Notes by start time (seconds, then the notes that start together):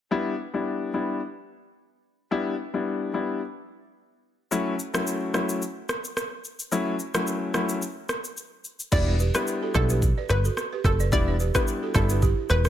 0.11 G3 B3 D4 E4
0.54 G3 B3 D4 E4
0.93 G3 B3 D4 E4
2.31 G3 B3 D4 E4
2.74 G3 B3 D4 E4
3.14 G3 B3 D4 E4
4.51 F#3 A3 C#4 E4, shaker
4.79 shaker
4.94 F#3 A3 C#4 E4, cross-stick, shaker
5.07 shaker
5.34 F#3 A3 C#4 E4, cross-stick, shaker
5.49 shaker
5.62 shaker
5.89 cross-stick, shaker
6.04 shaker
6.17 cross-stick, shaker
6.44 shaker
6.59 shaker
6.72 F#3 A3 C#4 E4, shaker
6.99 shaker
7.14 F#3 A3 C#4 E4, cross-stick, shaker
7.27 shaker
7.54 F#3 A3 C#4 E4, cross-stick, shaker
7.69 shaker
7.82 shaker
8.09 cross-stick, shaker
8.24 shaker
8.37 shaker
8.64 shaker
8.80 shaker
8.92 E1 G3 B3 D4 E4 D5, kick, crash, shaker
9.07 B4 D5
9.20 G4 B4, shaker
9.34 G3 B3 D4 E4 B4, cross-stick, shaker
9.47 shaker
9.63 F#4 A4
9.74 B1 G3 B3 D4 E4 A4, kick, cross-stick, shaker
9.89 G4 B4, shaker
10.02 kick, shaker
10.18 B4 D5
10.29 G1 B4, cross-stick, shaker
10.45 F#4 A4, shaker
10.57 cross-stick, shaker
10.73 G4 B4
10.84 F#1 A4, kick, cross-stick, shaker
11.00 B4 D5, shaker
11.12 E1 G3 B3 D4 E4 D5, kick, shaker
11.28 B4 D5
11.40 G4 B4, shaker
11.55 G3 B3 D4 E4 B4, kick, cross-stick, shaker
11.67 shaker
11.83 F#4 A4
11.94 G1 G3 B3 D4 E4 A4, kick, cross-stick, shaker
12.09 G4 B4, shaker
12.22 E4 G4, kick, shaker
12.49 E1 B4, cross-stick, shaker
12.65 cross-stick, shaker